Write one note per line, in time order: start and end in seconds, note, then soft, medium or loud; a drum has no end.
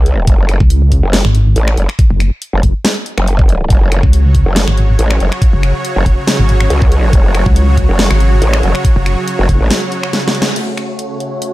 0.00 0.26 C#2 medium
0.06 closed hi-hat medium
0.27 0.59 F#1 loud
0.27 kick loud
0.27 closed hi-hat medium
0.49 finger snap medium
0.49 closed hi-hat medium
0.60 1.01 C#2 loud
0.60 kick loud
0.70 closed hi-hat medium
0.92 kick medium
0.92 closed hi-hat medium
1.03 1.23 F#1 loud
1.13 snare loud
1.13 closed hi-hat medium
1.25 1.54 G#1 loud
1.25 finger snap medium
1.35 closed hi-hat medium
1.56 1.76 A1 loud
1.56 closed hi-hat medium
1.68 finger snap medium
1.77 1.87 F#1 loud
1.77 closed hi-hat medium
1.89 finger snap medium
1.99 kick loud
1.99 closed hi-hat medium
2.10 2.30 F#1 loud
2.20 finger snap medium
2.20 closed hi-hat medium
2.42 closed hi-hat medium
2.53 2.62 F#1 loud
2.63 2.73 F#1 medium
2.63 kick medium
2.63 closed hi-hat soft
2.85 snare loud
2.85 closed hi-hat medium
3.06 closed hi-hat medium
3.17 3.69 F#1 loud
3.17 finger snap medium
3.28 closed hi-hat medium
3.39 kick loud
3.49 closed hi-hat medium
3.70 4.01 F#1 medium
3.70 10.52 C#3 medium
3.70 10.52 F#3 medium
3.70 10.52 F#4 medium
3.70 10.52 C#5 medium
3.70 kick loud
3.70 closed hi-hat medium
3.92 finger snap medium
3.92 closed hi-hat medium
4.03 4.44 C#2 loud
4.03 kick loud
4.13 closed hi-hat medium
4.35 kick medium
4.35 closed hi-hat soft
4.46 4.66 F#1 medium
4.56 snare loud
4.56 closed hi-hat medium
4.68 4.97 G#1 loud
4.68 finger snap medium
4.78 closed hi-hat medium
4.99 5.19 A1 loud
4.99 closed hi-hat medium
5.11 finger snap medium
5.20 5.30 F#1 loud
5.20 closed hi-hat medium
5.32 finger snap medium
5.42 kick loud
5.42 closed hi-hat medium
5.53 5.73 F#1 loud
5.63 finger snap medium
5.63 closed hi-hat soft
5.85 closed hi-hat medium
5.96 6.04 F#1 loud
6.06 6.16 F#1 loud
6.06 kick medium
6.06 closed hi-hat soft
6.27 snare loud
6.27 closed hi-hat medium
6.39 6.69 G#1 loud
6.49 closed hi-hat medium
6.60 finger snap medium
6.70 7.12 C#2 loud
6.70 closed hi-hat medium
6.82 kick loud
6.92 closed hi-hat medium
7.13 7.44 F#1 medium
7.13 kick loud
7.13 closed hi-hat medium
7.35 finger snap medium
7.35 closed hi-hat medium
7.46 7.87 C#2 loud
7.46 kick loud
7.56 closed hi-hat medium
7.77 kick medium
7.77 closed hi-hat medium
7.89 8.09 F#1 loud
7.99 snare loud
7.99 closed hi-hat medium
8.10 8.40 G#1 loud
8.10 finger snap medium
8.20 closed hi-hat medium
8.42 8.62 A1 medium
8.42 closed hi-hat medium
8.53 finger snap medium
8.63 8.73 F#1 loud
8.63 closed hi-hat medium
8.75 finger snap medium
8.85 kick loud
8.85 closed hi-hat medium
8.96 9.16 F#1 loud
9.06 finger snap medium
9.06 closed hi-hat medium
9.28 closed hi-hat medium
9.39 9.47 F#1 loud
9.49 9.59 F#1 loud
9.49 kick medium
9.49 closed hi-hat medium
9.60 9.70 A1 loud
9.70 snare loud
9.70 closed hi-hat medium
9.92 closed hi-hat medium
10.03 finger snap medium
10.13 snare medium
10.13 closed hi-hat medium
10.28 snare medium
10.35 closed hi-hat medium
10.42 snare loud
10.56 11.53 C#3 medium
10.56 11.53 A3 medium
10.56 11.53 F#4 medium
10.56 11.53 C#5 medium
10.56 closed hi-hat medium
10.56 crash medium
10.78 finger snap soft
10.78 closed hi-hat medium
10.99 closed hi-hat medium
11.20 closed hi-hat medium
11.42 closed hi-hat medium